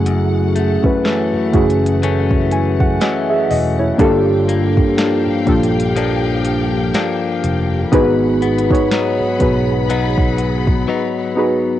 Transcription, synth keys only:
0.00 0.55 A3 medium
0.00 0.55 C#4 medium
0.00 0.55 E4 medium
0.00 0.56 F#4 medium
0.00 0.56 G#4 loud
0.83 1.39 A3 medium
0.83 1.40 C#4 medium
0.83 1.40 E4 medium
0.83 1.40 F#4 medium
0.83 1.41 B4 medium
1.52 3.07 A3 medium
1.52 3.08 C#4 medium
1.52 2.52 E4 medium
1.52 2.52 F#4 medium
1.52 2.53 G#4 medium
2.52 2.79 G#5 medium
2.81 3.00 F#5 medium
3.01 3.28 F#4 medium
3.01 3.28 D#5 medium
3.01 3.28 E5 medium
3.30 3.77 G#4 medium
3.30 3.76 E5 medium
3.50 3.96 D#5 medium
3.79 4.26 E4 medium
3.79 4.26 C#5 medium
3.98 5.17 A#3 loud
3.98 5.17 D4 loud
3.98 5.17 F4 loud
3.98 5.18 G4 loud
3.98 5.18 A4 loud
5.46 7.01 A#3 medium
5.46 7.01 D4 medium
5.46 7.01 F4 medium
5.46 7.02 G4 medium
5.46 7.02 A4 medium
7.92 8.51 B3 loud
7.92 8.51 D#4 loud
7.92 8.52 F#4 loud
7.92 8.52 G#4 loud
7.92 8.53 B4 loud
8.70 9.26 B3 medium
8.70 9.27 D#4 medium
8.70 9.27 F#4 medium
8.70 9.27 G#4 medium
8.70 9.28 C#5 medium
9.39 10.94 B3 medium
9.39 10.95 D#4 medium
9.39 10.95 F#4 medium
9.39 10.95 G#4 medium
9.39 10.96 B4 medium
11.36 11.77 B3 medium
11.36 11.77 D#4 medium
11.36 11.77 F#4 medium
11.36 11.78 G#4 medium
11.36 11.78 B4 loud

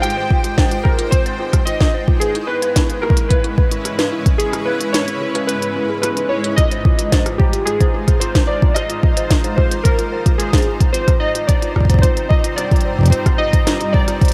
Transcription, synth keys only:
0.02 0.87 G5 loud
0.84 1.12 A#4 loud
1.11 1.68 C5 loud
1.65 2.04 D#5 loud
2.20 2.49 G#4 loud
2.47 3.04 B4 loud
3.02 3.28 A#4 medium
3.29 4.08 B4 medium
4.38 4.67 G#4 loud
4.65 4.94 B4 loud
4.93 5.44 C#5 loud
5.47 6.01 B4 loud
6.02 6.31 B4 loud
6.29 6.55 C#5 loud
6.56 7.35 D#5 loud
7.38 7.67 G4 medium
7.65 8.17 G#4 loud
8.20 8.49 C5 loud
8.47 8.76 D5 loud
8.74 9.60 D#5 loud
9.56 9.85 C5 loud
9.84 10.41 A#4 loud
10.38 10.77 G#4 loud
10.93 11.19 C5 loud
11.20 11.46 D#5 loud
11.47 12.04 D5 loud
12.02 12.28 C5 loud
12.29 12.55 D#5 loud
12.56 13.08 D5 loud
13.11 13.40 C5 loud
13.38 13.95 D#5 loud
13.93 14.34 D5 medium

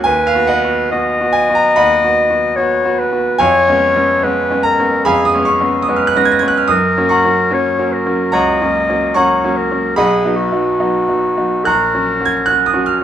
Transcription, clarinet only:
0.07 0.90 B4 medium
0.91 2.57 D#5 loud
2.56 3.01 C#5 medium
2.99 3.40 B4 medium
3.41 4.25 C#5 loud
4.24 4.66 B4 medium
4.65 5.07 A#4 medium
5.05 5.62 G#4 medium
5.89 6.73 B4 medium
6.71 7.55 A#4 medium
7.54 7.95 C#5 medium
7.93 8.36 A#4 medium
8.34 9.18 D#5 medium
9.16 9.59 C#5 medium
9.57 9.96 A#4 medium
9.96 10.38 G#4 medium
10.36 11.66 F#4 medium
11.64 12.99 A#4 medium

